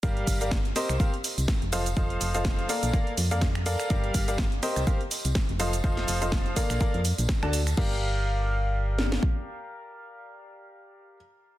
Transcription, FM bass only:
X:1
M:4/4
L:1/16
Q:"Swing 16ths" 1/4=124
K:Gm
V:1 name="FM bass" clef=bass
G,,,2 G,,,4 z C,, z3 C,, z F,,,3 | F,,,2 F,,,4 z B,,, z2 F,,4- F,, z | G,,,2 G,,,4 z C,, z3 C,, z F,,,3 | F,,,2 F,,,4 z B,,, z F,,2 B,,, z D,,3 |
G,,,12 z4 | z16 |]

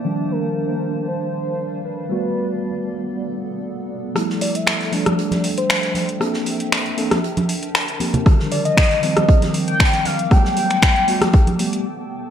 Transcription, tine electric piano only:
X:1
M:4/4
L:1/8
Q:"Swing 16ths" 1/4=117
K:F
V:1 name="Tine electric piano"
[_E,F,G,D]8 | [G,A,=B,^F]8 | [F,G,A,E]3 [F,G,A,D]4- [F,G,A,D] | [B,CDA]3 [B,CDA] z3 [B,CDG] |
[D,_E,F,G,]3 [E,F,G,C]4- [E,F,G,C] | [^F,G,A,=B,]3 [G,A,B,^F] z [G,A,B,G] z2 |]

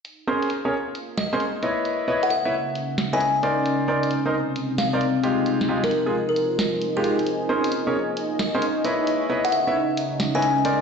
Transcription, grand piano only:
X:1
M:4/4
L:1/16
Q:"Swing 16ths" 1/4=133
K:Bbdor
V:1 name="Grand piano"
z2 [DABc]2 z [DABd] z4 z [DABc] z2 [=E_cd_e]2- | [=E_cd_e]2 [_Fcde]2 z [Fcd_f] z4 z [Fcde] z2 [_EB=c=d]2- | [EBc=d]2 [EBcd]2 z [EBce] z4 z [EBcd] z2 [A,EFG]2- | [A,EFG]2 [A,EFG]2 z [A,EFA] z6 z [A,EFG]2 z |
z2 [DABc]2 z [DABd] z4 z [DABc] z2 [=E_cd_e]2- | [=E_cd_e]2 [_Fcde]2 z [Fcd_f] z4 z [Fcde] z2 [_EB=c=d]2 |]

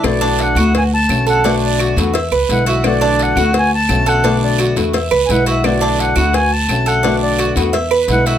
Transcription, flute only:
X:1
M:4/4
L:1/16
Q:1/4=172
K:Bdor
V:1 name="Flute"
d4 f4 g2 a4 f2- | f3/2 z/2 d4 z6 f2 e2 | d4 f4 g2 a4 f2- | f3/2 z/2 d4 z4 z3/2 g/2 f2 e2 |
d4 f4 g2 a4 f2- | f3/2 z/2 d4 z6 f2 e2 |]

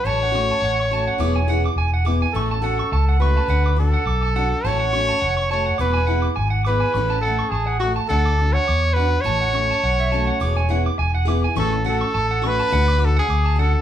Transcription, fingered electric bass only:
X:1
M:4/4
L:1/8
Q:"Swing 16ths" 1/4=104
K:A
V:1 name="Fingered electric bass" clef=bass
A,,,2 A,,,2 E,,,2 E,,,2 | A,,,2 C,,2 D,,2 B,,,2 | A,,,2 =F,,,2 E,,,2 G,,,2 | A,,,2 A,,,2 D,,2 E,,2 |
A,,,2 B,,,2 E,,,2 E,,,2 | A,,,2 A,,,2 D,,2 D,,2 |]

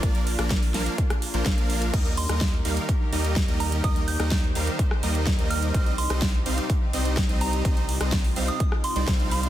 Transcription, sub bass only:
X:1
M:4/4
L:1/16
Q:1/4=126
K:Eb
V:1 name="Sub bass" clef=bass
B,,,3 B,,,3 B,,, z4 B,,, B,,,4 | E,,3 E,,3 E,, z3 E,,3 E,,3 | E,,3 E,,3 E,, z3 E,,3 E,,3 | C,,3 C,,3 C,, z3 C,,3 C,,3 |
C,,3 C,,3 C,, z4 C,, C,,4 |]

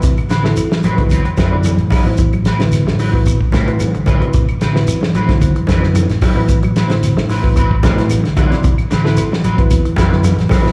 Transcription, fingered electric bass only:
X:1
M:4/4
L:1/16
Q:1/4=112
K:Ador
V:1 name="Fingered electric bass" clef=bass
A,,, z A,,,2 z2 A,,,2 E,, z F,,3 A,,, z A,,,- | A,,,2 A,,,3 A,,,4 A,,, A,,2 A,,, z A,,, z | A,,, z A,,,2 z2 A,,,2 E,, z F,,3 A,,, z A,,,- | A,,,2 A,,,3 A,,,4 A,,, A,,2 A,,, z A,,, z |
A,,, z A,,,2 z2 A,,,2 E,, z F,,3 A,,, z A,,, |]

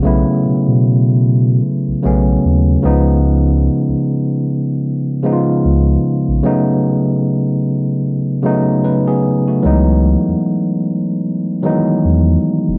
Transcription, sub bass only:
X:1
M:4/4
L:1/16
Q:"Swing 16ths" 1/4=75
K:C#m
V:1 name="Sub bass" clef=bass
B,,, z B,, B,,4- B,, z B,,, B,,,2 D,,2 C,,2- | C,,3 C,, z8 C,,2 z ^A,,, | z16 | C,,3 E,, z8 E,,2 z ^E,,, |]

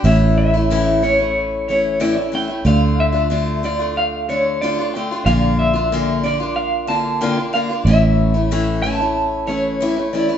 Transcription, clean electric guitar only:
X:1
M:4/4
L:1/8
Q:1/4=92
K:Aphr
V:1 name="Clean electric guitar"
e e2 ^c2 c d g | f e2 d f ^c d g | f e2 d f a g f | e3 a2 ^c2 d |]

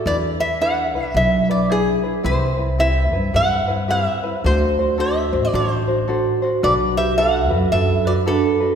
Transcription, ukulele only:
X:1
M:4/4
L:1/8
Q:"Swing" 1/4=110
K:Clyd
V:1 name="Ukulele"
[DE^GB] [DEB] [DEGB] [DEB] [DEGB] [DEB] [DEGB] [DEB] | [CEGB] [CEB] [CEGB] [CEB] [CEGB] [CEB] [CEGB] [CEB] | [DFAc] [DFc] [DFAc] [DFc] [DFAc] [DFc] [DFAc] [DFc] | [DFAB] [DFB] [DFAB] [DFB] [DFAB] [DFB] [DFAB] [DFB] |]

